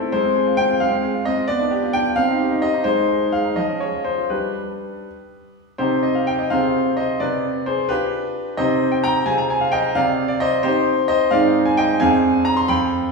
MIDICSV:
0, 0, Header, 1, 2, 480
1, 0, Start_track
1, 0, Key_signature, -3, "minor"
1, 0, Tempo, 453172
1, 144, Time_signature, 6, 3, 24, 8
1, 3025, Tempo, 476948
1, 3985, Tempo, 496278
1, 5905, Tempo, 471328
1, 7345, Tempo, 455235
1, 13576, End_track
2, 0, Start_track
2, 0, Title_t, "Grand piano"
2, 0, Program_c, 0, 0
2, 0, Note_on_c, 0, 57, 61
2, 0, Note_on_c, 0, 69, 93
2, 19, Note_on_c, 0, 64, 58
2, 117, Note_off_c, 0, 57, 0
2, 131, Note_on_c, 0, 72, 92
2, 136, Note_off_c, 0, 69, 0
2, 137, Note_on_c, 0, 56, 72
2, 141, Note_off_c, 0, 64, 0
2, 256, Note_on_c, 0, 60, 52
2, 351, Control_c, 0, 64, 127
2, 376, Note_on_c, 0, 68, 58
2, 450, Note_off_c, 0, 60, 0
2, 493, Note_on_c, 0, 65, 54
2, 569, Note_off_c, 0, 68, 0
2, 605, Note_on_c, 0, 79, 109
2, 613, Note_on_c, 0, 60, 54
2, 614, Note_off_c, 0, 72, 0
2, 687, Note_off_c, 0, 65, 0
2, 732, Note_on_c, 0, 65, 55
2, 806, Note_off_c, 0, 60, 0
2, 840, Note_off_c, 0, 56, 0
2, 849, Note_off_c, 0, 79, 0
2, 849, Note_on_c, 0, 77, 95
2, 856, Note_on_c, 0, 56, 64
2, 868, Control_c, 0, 64, 0
2, 924, Note_off_c, 0, 65, 0
2, 975, Note_on_c, 0, 60, 52
2, 1088, Note_on_c, 0, 68, 58
2, 1164, Note_off_c, 0, 60, 0
2, 1209, Note_on_c, 0, 65, 51
2, 1280, Note_off_c, 0, 68, 0
2, 1327, Note_off_c, 0, 77, 0
2, 1329, Note_on_c, 0, 75, 89
2, 1334, Note_on_c, 0, 60, 54
2, 1401, Note_off_c, 0, 65, 0
2, 1452, Note_on_c, 0, 65, 54
2, 1523, Note_off_c, 0, 60, 0
2, 1548, Note_off_c, 0, 56, 0
2, 1564, Note_on_c, 0, 74, 101
2, 1568, Note_on_c, 0, 59, 70
2, 1569, Note_off_c, 0, 75, 0
2, 1570, Note_off_c, 0, 65, 0
2, 1690, Note_on_c, 0, 62, 55
2, 1790, Control_c, 0, 64, 127
2, 1811, Note_on_c, 0, 67, 55
2, 1881, Note_off_c, 0, 62, 0
2, 1930, Note_on_c, 0, 65, 51
2, 2002, Note_off_c, 0, 67, 0
2, 2046, Note_off_c, 0, 74, 0
2, 2048, Note_on_c, 0, 79, 105
2, 2054, Note_on_c, 0, 62, 53
2, 2123, Note_off_c, 0, 65, 0
2, 2178, Note_on_c, 0, 65, 52
2, 2246, Note_off_c, 0, 62, 0
2, 2270, Note_off_c, 0, 59, 0
2, 2285, Note_on_c, 0, 77, 103
2, 2291, Note_on_c, 0, 60, 71
2, 2292, Note_off_c, 0, 79, 0
2, 2296, Note_off_c, 0, 65, 0
2, 2300, Control_c, 0, 64, 0
2, 2418, Note_on_c, 0, 63, 51
2, 2518, Control_c, 0, 64, 127
2, 2537, Note_on_c, 0, 67, 52
2, 2611, Note_off_c, 0, 63, 0
2, 2656, Note_on_c, 0, 63, 55
2, 2732, Note_off_c, 0, 67, 0
2, 2774, Note_on_c, 0, 75, 92
2, 2777, Note_off_c, 0, 77, 0
2, 2778, Note_on_c, 0, 67, 51
2, 2853, Note_off_c, 0, 63, 0
2, 2895, Note_on_c, 0, 63, 53
2, 2976, Note_off_c, 0, 67, 0
2, 3004, Note_off_c, 0, 60, 0
2, 3010, Note_on_c, 0, 72, 95
2, 3016, Note_on_c, 0, 56, 61
2, 3022, Note_off_c, 0, 63, 0
2, 3023, Note_off_c, 0, 75, 0
2, 3038, Control_c, 0, 64, 0
2, 3135, Note_on_c, 0, 63, 49
2, 3230, Control_c, 0, 64, 127
2, 3253, Note_on_c, 0, 68, 53
2, 3331, Note_off_c, 0, 63, 0
2, 3377, Note_on_c, 0, 63, 50
2, 3450, Note_off_c, 0, 68, 0
2, 3495, Note_off_c, 0, 72, 0
2, 3497, Note_on_c, 0, 77, 85
2, 3501, Note_on_c, 0, 68, 49
2, 3573, Note_off_c, 0, 63, 0
2, 3621, Note_on_c, 0, 63, 46
2, 3695, Note_off_c, 0, 68, 0
2, 3717, Note_off_c, 0, 56, 0
2, 3734, Note_on_c, 0, 75, 71
2, 3738, Note_on_c, 0, 53, 58
2, 3741, Note_off_c, 0, 77, 0
2, 3743, Note_off_c, 0, 63, 0
2, 3752, Control_c, 0, 64, 0
2, 3861, Note_on_c, 0, 61, 44
2, 3918, Control_c, 0, 64, 127
2, 3979, Note_on_c, 0, 73, 68
2, 3981, Note_off_c, 0, 75, 0
2, 3984, Note_on_c, 0, 68, 46
2, 4055, Note_off_c, 0, 61, 0
2, 4102, Note_on_c, 0, 65, 41
2, 4174, Note_off_c, 0, 68, 0
2, 4213, Note_on_c, 0, 72, 67
2, 4219, Note_off_c, 0, 73, 0
2, 4220, Note_on_c, 0, 61, 40
2, 4294, Note_off_c, 0, 65, 0
2, 4340, Note_on_c, 0, 65, 42
2, 4415, Note_off_c, 0, 61, 0
2, 4441, Note_off_c, 0, 53, 0
2, 4458, Note_on_c, 0, 71, 66
2, 4460, Note_off_c, 0, 72, 0
2, 4460, Note_on_c, 0, 55, 46
2, 4460, Note_on_c, 0, 62, 39
2, 4462, Note_on_c, 0, 67, 38
2, 4463, Note_off_c, 0, 65, 0
2, 4480, Control_c, 0, 64, 0
2, 4656, Control_c, 0, 64, 127
2, 4969, Note_off_c, 0, 55, 0
2, 5042, Note_off_c, 0, 62, 0
2, 5043, Note_off_c, 0, 67, 0
2, 5203, Control_c, 0, 64, 0
2, 5667, Note_off_c, 0, 71, 0
2, 5894, Note_on_c, 0, 72, 83
2, 5899, Note_on_c, 0, 48, 62
2, 5900, Note_on_c, 0, 60, 41
2, 5905, Note_on_c, 0, 67, 66
2, 5906, Note_on_c, 0, 63, 45
2, 6081, Control_c, 0, 64, 127
2, 6130, Note_off_c, 0, 67, 0
2, 6141, Note_off_c, 0, 72, 0
2, 6143, Note_on_c, 0, 75, 68
2, 6266, Note_off_c, 0, 75, 0
2, 6266, Note_on_c, 0, 77, 65
2, 6388, Note_off_c, 0, 77, 0
2, 6388, Note_on_c, 0, 79, 84
2, 6509, Note_on_c, 0, 75, 63
2, 6510, Note_off_c, 0, 79, 0
2, 6588, Note_off_c, 0, 60, 0
2, 6590, Note_off_c, 0, 63, 0
2, 6606, Note_off_c, 0, 48, 0
2, 6626, Note_on_c, 0, 77, 91
2, 6631, Note_off_c, 0, 75, 0
2, 6632, Note_on_c, 0, 60, 49
2, 6634, Note_on_c, 0, 48, 61
2, 6638, Note_on_c, 0, 72, 66
2, 6642, Note_on_c, 0, 65, 45
2, 6643, Control_c, 0, 64, 0
2, 6646, Note_on_c, 0, 68, 47
2, 6858, Control_c, 0, 64, 127
2, 7080, Note_off_c, 0, 72, 0
2, 7099, Note_on_c, 0, 75, 79
2, 7107, Note_off_c, 0, 77, 0
2, 7112, Note_on_c, 0, 72, 59
2, 7306, Note_off_c, 0, 60, 0
2, 7311, Note_off_c, 0, 65, 0
2, 7313, Note_off_c, 0, 68, 0
2, 7323, Note_off_c, 0, 48, 0
2, 7331, Note_off_c, 0, 72, 0
2, 7336, Note_on_c, 0, 74, 87
2, 7339, Note_on_c, 0, 48, 64
2, 7341, Note_off_c, 0, 75, 0
2, 7348, Note_on_c, 0, 71, 66
2, 7361, Control_c, 0, 64, 0
2, 7561, Control_c, 0, 64, 127
2, 7799, Note_off_c, 0, 71, 0
2, 7823, Note_on_c, 0, 72, 82
2, 7827, Note_off_c, 0, 74, 0
2, 7836, Note_on_c, 0, 68, 64
2, 8046, Note_off_c, 0, 48, 0
2, 8057, Note_off_c, 0, 68, 0
2, 8060, Note_on_c, 0, 71, 93
2, 8064, Note_on_c, 0, 62, 51
2, 8067, Note_off_c, 0, 72, 0
2, 8067, Note_on_c, 0, 65, 56
2, 8071, Note_on_c, 0, 67, 74
2, 8081, Control_c, 0, 64, 0
2, 8747, Note_off_c, 0, 62, 0
2, 8749, Note_off_c, 0, 65, 0
2, 8751, Note_off_c, 0, 67, 0
2, 8784, Note_on_c, 0, 75, 94
2, 8787, Note_off_c, 0, 71, 0
2, 8787, Note_on_c, 0, 48, 72
2, 8787, Note_on_c, 0, 60, 51
2, 8792, Note_on_c, 0, 63, 51
2, 8795, Note_on_c, 0, 72, 71
2, 8802, Note_on_c, 0, 67, 54
2, 8987, Control_c, 0, 64, 127
2, 9132, Note_off_c, 0, 72, 0
2, 9145, Note_on_c, 0, 79, 74
2, 9152, Note_off_c, 0, 75, 0
2, 9264, Note_off_c, 0, 79, 0
2, 9271, Note_on_c, 0, 82, 105
2, 9279, Note_on_c, 0, 79, 83
2, 9475, Note_off_c, 0, 60, 0
2, 9477, Note_off_c, 0, 63, 0
2, 9482, Note_off_c, 0, 67, 0
2, 9495, Note_off_c, 0, 48, 0
2, 9504, Note_off_c, 0, 79, 0
2, 9506, Note_on_c, 0, 80, 96
2, 9510, Note_on_c, 0, 48, 72
2, 9514, Note_on_c, 0, 60, 53
2, 9516, Note_on_c, 0, 65, 54
2, 9517, Note_off_c, 0, 82, 0
2, 9523, Note_on_c, 0, 68, 54
2, 9528, Control_c, 0, 64, 0
2, 9632, Note_on_c, 0, 82, 80
2, 9634, Note_off_c, 0, 80, 0
2, 9707, Control_c, 0, 64, 127
2, 9758, Note_off_c, 0, 82, 0
2, 9764, Note_on_c, 0, 80, 80
2, 9875, Note_on_c, 0, 77, 81
2, 9884, Note_off_c, 0, 80, 0
2, 9989, Note_on_c, 0, 79, 97
2, 10000, Note_off_c, 0, 77, 0
2, 10000, Note_on_c, 0, 75, 78
2, 10201, Note_off_c, 0, 60, 0
2, 10202, Note_off_c, 0, 65, 0
2, 10205, Note_off_c, 0, 68, 0
2, 10219, Note_off_c, 0, 48, 0
2, 10227, Note_off_c, 0, 75, 0
2, 10237, Note_on_c, 0, 77, 105
2, 10238, Note_off_c, 0, 79, 0
2, 10240, Note_on_c, 0, 48, 72
2, 10249, Note_on_c, 0, 74, 75
2, 10258, Control_c, 0, 64, 0
2, 10455, Control_c, 0, 64, 127
2, 10570, Note_off_c, 0, 74, 0
2, 10586, Note_on_c, 0, 74, 83
2, 10603, Note_off_c, 0, 77, 0
2, 10713, Note_on_c, 0, 75, 107
2, 10717, Note_off_c, 0, 74, 0
2, 10725, Note_on_c, 0, 72, 77
2, 10937, Note_off_c, 0, 72, 0
2, 10942, Note_off_c, 0, 48, 0
2, 10953, Note_on_c, 0, 72, 102
2, 10960, Note_off_c, 0, 75, 0
2, 10962, Note_on_c, 0, 60, 57
2, 10967, Note_on_c, 0, 63, 57
2, 10969, Note_on_c, 0, 67, 81
2, 10974, Control_c, 0, 64, 0
2, 11412, Note_off_c, 0, 67, 0
2, 11424, Note_off_c, 0, 72, 0
2, 11427, Note_on_c, 0, 75, 97
2, 11439, Note_on_c, 0, 72, 77
2, 11639, Note_off_c, 0, 60, 0
2, 11641, Note_off_c, 0, 63, 0
2, 11664, Note_off_c, 0, 72, 0
2, 11667, Note_on_c, 0, 77, 102
2, 11671, Note_on_c, 0, 44, 80
2, 11675, Note_off_c, 0, 75, 0
2, 11675, Note_on_c, 0, 60, 57
2, 11678, Note_on_c, 0, 63, 55
2, 11681, Note_on_c, 0, 74, 83
2, 11683, Note_on_c, 0, 68, 55
2, 11890, Control_c, 0, 64, 127
2, 12016, Note_off_c, 0, 74, 0
2, 12033, Note_on_c, 0, 80, 84
2, 12035, Note_off_c, 0, 77, 0
2, 12157, Note_off_c, 0, 80, 0
2, 12158, Note_on_c, 0, 79, 107
2, 12172, Note_on_c, 0, 75, 79
2, 12352, Note_off_c, 0, 60, 0
2, 12353, Note_off_c, 0, 63, 0
2, 12356, Note_off_c, 0, 68, 0
2, 12371, Note_off_c, 0, 44, 0
2, 12387, Note_off_c, 0, 75, 0
2, 12395, Note_on_c, 0, 80, 111
2, 12397, Note_off_c, 0, 79, 0
2, 12400, Note_on_c, 0, 41, 76
2, 12400, Note_on_c, 0, 60, 58
2, 12407, Control_c, 0, 64, 0
2, 12409, Note_on_c, 0, 62, 56
2, 12409, Note_on_c, 0, 77, 82
2, 12415, Note_on_c, 0, 68, 61
2, 12572, Control_c, 0, 64, 127
2, 12844, Note_off_c, 0, 77, 0
2, 12870, Note_off_c, 0, 80, 0
2, 12870, Note_on_c, 0, 82, 105
2, 12989, Note_off_c, 0, 82, 0
2, 12994, Note_on_c, 0, 84, 89
2, 13067, Note_off_c, 0, 60, 0
2, 13071, Note_off_c, 0, 62, 0
2, 13074, Note_off_c, 0, 68, 0
2, 13087, Note_off_c, 0, 41, 0
2, 13110, Note_off_c, 0, 84, 0
2, 13116, Note_on_c, 0, 83, 103
2, 13118, Control_c, 0, 64, 0
2, 13120, Note_on_c, 0, 41, 72
2, 13127, Note_on_c, 0, 79, 78
2, 13280, Control_c, 0, 64, 127
2, 13561, Note_off_c, 0, 79, 0
2, 13576, Note_off_c, 0, 41, 0
2, 13576, Note_off_c, 0, 83, 0
2, 13576, End_track
0, 0, End_of_file